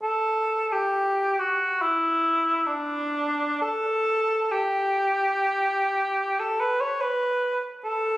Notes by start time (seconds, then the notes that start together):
0.03 A4
0.72 G4
1.39 F#4
1.82 E4
2.66 D4
3.62 A4
4.52 G4
6.40 A4
6.60 B4
6.81 C#5
7.01 B4
7.84 A4